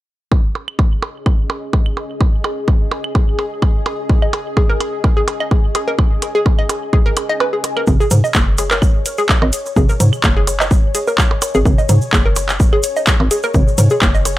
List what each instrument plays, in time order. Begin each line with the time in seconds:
0.32 ambient pad C#4, synth texture G#4, kick, percussion blips
0.55 closed hi-hat, percussion blips
0.67 ambient pad D#5, claves
0.77 ambient pad G#4, kick, percussion blips
1.02 closed hi-hat, percussion blips
1.26 kick, claves, percussion blips
1.50 percussion blips
1.73 kick, percussion blips
1.86 claves
1.92 ambient pad G#5
1.97 closed hi-hat, percussion blips
2.21 kick, percussion blips
2.44 closed hi-hat, claves, percussion blips
2.68 kick, percussion blips
2.91 closed hi-hat, percussion blips
3.04 claves
3.15 kick, percussion blips
3.39 closed hi-hat, percussion blips
3.62 kick, claves, percussion blips
3.86 closed hi-hat, percussion blips
4.10 kick, percussion blips
4.22 synth arpeggio sound D#5, claves
4.33 closed hi-hat, percussion blips
4.57 synth arpeggio sound G#4, kick, percussion blips
4.69 synth arpeggio sound A#4
4.80 closed hi-hat, claves, percussion blips
5.04 kick, percussion blips
5.17 synth arpeggio sound G#4
5.28 closed hi-hat, percussion blips
5.40 synth arpeggio sound D#5, claves
5.51 kick, percussion blips
5.75 synth arpeggio sound G#4, closed hi-hat, percussion blips
5.88 synth arpeggio sound A#4
5.99 kick, claves, percussion blips
6.22 closed hi-hat, percussion blips
6.35 synth arpeggio sound G#4
6.46 kick, percussion blips
6.59 synth arpeggio sound D#5, claves
6.69 closed hi-hat, percussion blips
6.93 synth arpeggio sound G#4, kick, percussion blips
7.06 synth arpeggio sound A#4
7.17 closed hi-hat, claves, percussion blips
7.29 synth arpeggio sound D#5
7.40 synth arpeggio sound B4, percussion blips
7.53 synth arpeggio sound G#4
7.64 closed hi-hat, percussion blips
7.77 synth arpeggio sound A#4, claves
7.87 fm bass G#1, synth texture C#5, kick, mid tom, shaker
8.00 synth arpeggio sound G#4, shaker
8.11 fm bass G#2, closed hi-hat, mid tom, shaker
8.24 synth arpeggio sound D#5, shaker
8.34 fm bass F#1, kick, clap, shaker
8.58 synth arpeggio sound G#4, closed hi-hat, percussion blips, shaker
8.71 synth arpeggio sound A#4, clap, shaker
8.82 kick, claves, shaker
9.06 closed hi-hat, shaker
9.18 synth arpeggio sound G#4, shaker
9.29 kick, clap, shaker
9.42 fm bass G#1, synth arpeggio sound D#5, percussion blips
9.53 closed hi-hat, shaker
9.66 shaker
9.76 fm bass G#1, synth arpeggio sound G#4, kick, mid tom, shaker
9.89 synth arpeggio sound A#4, shaker
10.00 fm bass G#2, closed hi-hat, mid tom, shaker
10.13 claves, shaker
10.24 fm bass F#1, kick, clap, shaker
10.37 synth arpeggio sound G#4
10.47 closed hi-hat, percussion blips, shaker
10.60 synth arpeggio sound D#5, clap, shaker
10.71 kick, shaker
10.95 synth arpeggio sound G#4, closed hi-hat, shaker
11.07 synth arpeggio sound A#4, shaker
11.18 kick, clap, shaker
11.31 percussion blips
11.42 closed hi-hat, claves, percussion blips, shaker
11.54 fm bass G#1, synth arpeggio sound G#4, shaker
11.65 fm bass G#1, kick, mid tom, shaker
11.78 synth arpeggio sound D#5, shaker
11.89 fm bass G#2, closed hi-hat, mid tom, shaker
12.02 shaker
12.13 fm bass F#1, synth arpeggio sound G#4, kick, clap, shaker
12.26 synth arpeggio sound A#4
12.36 closed hi-hat, percussion blips, shaker
12.49 clap, shaker
12.60 kick, shaker
12.73 synth arpeggio sound G#4, claves
12.83 closed hi-hat, shaker
12.96 synth arpeggio sound D#5, shaker
13.07 kick, clap, shaker
13.20 fm bass G#1, percussion blips
13.31 synth arpeggio sound G#4, closed hi-hat, shaker
13.43 synth arpeggio sound A#4, shaker
13.54 fm bass G#1, kick, mid tom, shaker
13.68 shaker
13.78 fm bass G#2, closed hi-hat, mid tom, shaker
13.90 synth arpeggio sound G#4, shaker
14.02 fm bass F#1, kick, clap, claves, shaker
14.15 synth arpeggio sound D#5, shaker
14.25 closed hi-hat, percussion blips, shaker